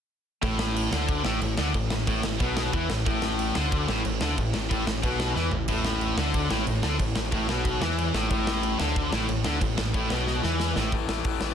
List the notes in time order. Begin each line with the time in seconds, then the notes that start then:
0.42 A1 A2, kick, crash
0.59 snare
0.76 crash
0.92 D2 D3, snare
1.09 kick, crash
1.24 A1 A2, snare
1.41 A1 A2, crash
1.57 D2 D3, snare
1.74 A1 A2, kick, crash
1.90 A1 A2, snare
2.07 A1 A2, kick, crash
2.23 A1 A2, snare
2.40 B1 B2, kick, crash
2.57 snare
2.73 E2 E3, kick, crash
2.90 A1 A2, snare
3.06 A1 A2, kick, crash
3.22 snare
3.39 crash
3.55 D2 D3, snare
3.72 kick, crash
3.88 A1 A2, snare
4.05 A1 A2, crash
4.21 D2 D3, snare
4.38 A1 A2, kick, crash
4.54 A1 A2, snare
4.71 A1 A2, kick, crash
4.87 A1 A2, snare
5.03 B1 B2, kick, crash
5.20 snare
5.35 E2 E3, snare
5.51 A1 A2, floor tom
5.68 A1 A2, kick, crash
5.85 snare
6.01 crash
6.17 D2 D3, snare
6.34 kick, crash
6.50 A1 A2, snare
6.67 A1 A2, crash
6.83 D2 D3, snare
7.00 A1 A2, kick, crash
7.15 A1 A2, snare
7.32 A1 A2, kick, crash
7.49 B1 B2, snare
7.65 kick, crash
7.82 E2 E3, snare
7.99 crash
8.13 A1 A2, snare
8.30 A1 A2, kick, crash
8.47 snare
8.63 crash
8.79 D2 D3, snare
8.96 kick, crash
9.12 A1 A2, snare
9.28 A1 A2, crash
9.44 D2 D3, snare
9.61 A1 A2, kick, crash
9.78 A1 A2, snare
9.94 A1 A2, kick, crash
10.10 B1 B2, snare
10.27 snare
10.43 E2 E3, snare
10.60 snare
10.76 A1 A2, snare
10.92 A1 A2 E3 A3, kick, open hi-hat
11.09 A1, snare
11.25 A1 A2 E3 A3, kick, open hi-hat
11.41 A1 A2 E3 A3, snare